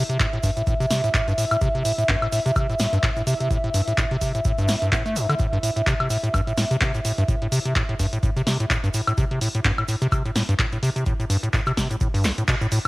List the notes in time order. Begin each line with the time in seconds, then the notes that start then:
Already playing: E5
0.09 C3, closed hi-hat, shaker
0.20 A2, kick, clap, closed hi-hat, shaker
0.33 A2, closed hi-hat
0.43 G2, kick, open hi-hat, shaker
0.56 A2, closed hi-hat, shaker
0.67 A2, kick, closed hi-hat, shaker
0.80 C3, closed hi-hat, shaker
0.91 C3, snare, open hi-hat, shaker
1.04 A2, closed hi-hat, shaker
1.14 A2, kick, clap, closed hi-hat, shaker
1.28 G2, closed hi-hat, shaker
1.38 A2, open hi-hat, shaker
1.51 A2, closed hi-hat, high woodblock, shaker
1.61 C3, kick, closed hi-hat, shaker
1.75 C3, closed hi-hat
1.85 A2, open hi-hat, shaker
1.98 A2, closed hi-hat, shaker
2.09 G2, kick, clap, closed hi-hat, shaker
2.22 A2, closed hi-hat, high woodblock
2.32 A2, open hi-hat, shaker
2.46 C3, closed hi-hat, shaker
2.56 C3, kick, closed hi-hat, high woodblock, shaker
2.70 A2, closed hi-hat, shaker
2.79 A2, snare, open hi-hat, shaker
2.93 G2, closed hi-hat, shaker
3.03 A2, kick, clap, closed hi-hat, shaker
3.16 A2, closed hi-hat, shaker
3.27 C3, open hi-hat, shaker
3.40 C3, closed hi-hat, shaker
3.51 A2, kick, closed hi-hat, shaker
3.64 A2, closed hi-hat
3.74 G2, open hi-hat, shaker
3.88 A2, closed hi-hat, shaker
3.98 A2, kick, clap, closed hi-hat, shaker
4.11 C3, closed hi-hat
4.21 C3, kick, open hi-hat, shaker
4.35 A2, closed hi-hat, shaker
4.45 A2, kick, closed hi-hat, shaker
4.58 G2, closed hi-hat, shaker
4.68 A2, snare, open hi-hat, shaker
4.82 G2, closed hi-hat, shaker
4.92 A2, kick, clap, closed hi-hat, shaker
5.06 A3, closed hi-hat, shaker
5.16 G2, open hi-hat, shaker
5.29 D3, closed hi-hat, high woodblock, shaker
5.39 A2, kick, closed hi-hat, shaker
5.53 G2, closed hi-hat
5.63 A2, open hi-hat, shaker
5.76 A2, closed hi-hat, shaker
5.87 C3, kick, clap, closed hi-hat, shaker
6.00 C3, closed hi-hat, high woodblock
6.10 A2, open hi-hat, shaker
6.23 A2, closed hi-hat, shaker
6.34 G2, kick, closed hi-hat, high woodblock, shaker
6.47 A2, closed hi-hat, shaker
6.57 A2, snare, open hi-hat, shaker
6.71 C3, closed hi-hat, shaker
6.81 C3, kick, clap, closed hi-hat, shaker
6.94 A2, closed hi-hat, shaker
7.05 A2, open hi-hat, shaker
7.18 G2, closed hi-hat, shaker
7.28 A2, kick, closed hi-hat, shaker
7.42 A2, closed hi-hat
7.52 C3, open hi-hat, shaker
7.65 C3, closed hi-hat, shaker
7.75 A2, kick, clap, closed hi-hat, shaker
7.89 A2, closed hi-hat
7.99 G2, kick, open hi-hat, shaker
8.13 A2, closed hi-hat, shaker
8.23 A2, kick, closed hi-hat, shaker
8.36 C3, closed hi-hat, shaker
8.47 C3, snare, open hi-hat, shaker
8.60 A2, closed hi-hat, shaker
8.70 A2, kick, clap, closed hi-hat, shaker
8.84 G2, closed hi-hat, shaker
8.94 A2, open hi-hat, shaker
9.07 A2, closed hi-hat, high woodblock, shaker
9.17 C3, kick, closed hi-hat, shaker
9.31 C3, closed hi-hat
9.41 A2, open hi-hat, shaker
9.55 A2, closed hi-hat, shaker
9.64 G2, kick, clap, closed hi-hat, shaker
9.78 A2, closed hi-hat, high woodblock
9.88 A2, open hi-hat, shaker
10.01 C3, closed hi-hat, shaker
10.12 C3, kick, closed hi-hat, high woodblock, shaker
10.25 A2, closed hi-hat, shaker
10.36 A2, snare, open hi-hat, shaker
10.49 G2, closed hi-hat, shaker
10.59 A2, kick, clap, closed hi-hat, shaker
10.72 A2, closed hi-hat, shaker
10.83 C3, open hi-hat, shaker
10.96 C3, closed hi-hat, shaker
11.06 A2, kick, closed hi-hat, shaker
11.20 A2, closed hi-hat, shaker
11.30 G2, open hi-hat, shaker
11.43 A2, closed hi-hat, shaker
11.53 A2, kick, clap, closed hi-hat, shaker
11.66 C3, closed hi-hat, high woodblock, shaker
11.77 C3, kick, snare, open hi-hat, shaker
11.90 A2, closed hi-hat, shaker
12.01 A2, kick, closed hi-hat, shaker
12.14 G2, open hi-hat, shaker
12.24 A1, snare, clap, open hi-hat, shaker
12.38 A2, closed hi-hat, shaker
12.48 B2, kick, clap, closed hi-hat, shaker
12.61 A2, closed hi-hat, shaker
12.72 A2, open hi-hat, shaker